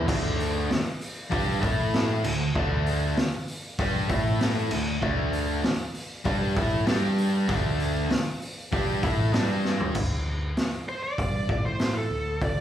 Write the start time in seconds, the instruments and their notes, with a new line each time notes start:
0.07 picked electric bass D2, distorted electric guitar D3 A3 D4, kick, crash
0.40 open hi-hat
0.70 muted distorted electric guitar stroke, muted picked electric bass stroke, snare, open hi-hat
1.01 open hi-hat
1.30 picked electric bass G2, distorted electric guitar G3 D4 G4, kick, open hi-hat
1.61 picked electric bass A2, distorted electric guitar A3 E4 A4, kick, open hi-hat
1.94 snare, open hi-hat
2.24 picked electric bass D2, distorted electric guitar D3 A3, crash
2.55 picked electric bass D2, distorted electric guitar D3 A3 D4, kick
2.86 open hi-hat
3.17 muted picked electric bass stroke, muted distorted electric guitar stroke, snare, open hi-hat
3.48 open hi-hat
3.79 picked electric bass G2, distorted electric guitar G3 D4 G4, kick, open hi-hat
4.09 picked electric bass A2, distorted electric guitar A3 E4 A4, kick, open hi-hat
4.41 snare, open hi-hat
4.71 picked electric bass D2, distorted electric guitar D3 A3, crash
5.01 picked electric bass D2, distorted electric guitar D3 A3 D4, kick
5.33 open hi-hat
5.63 muted distorted electric guitar stroke, muted picked electric bass stroke, snare, open hi-hat
5.94 open hi-hat
6.25 picked electric bass G2, distorted electric guitar G3 D4 G4, kick, open hi-hat
6.56 picked electric bass A2, distorted electric guitar A3 E4 A4, kick, open hi-hat
6.86 picked electric bass G2, distorted electric guitar G3 D4 G4, snare, open hi-hat
7.18 open hi-hat
7.48 picked electric bass D2, distorted electric guitar D3 A3 D4, kick, open hi-hat
7.80 open hi-hat
8.10 muted distorted electric guitar stroke, muted picked electric bass stroke, snare, open hi-hat
8.42 open hi-hat
8.72 picked electric bass G2, distorted electric guitar G3 D4 G4, kick, open hi-hat
9.03 picked electric bass A2, distorted electric guitar A3 E4 A4, kick, open hi-hat
9.34 picked electric bass G2, distorted electric guitar G3 D4 G4, snare, open hi-hat
9.65 snare
9.80 floor tom
9.95 picked electric bass D2, kick, crash
10.57 muted picked electric bass stroke, snare, open hi-hat
10.89 lead electric guitar C5
11.03 lead electric guitar D5
11.18 picked electric bass G2, kick, open hi-hat
11.49 picked electric bass A2, kick
11.66 lead electric guitar C5
11.79 snare, open hi-hat
11.98 lead electric guitar A4
12.11 picked electric bass D2
12.41 picked electric bass D2, lead electric guitar D5, kick, open hi-hat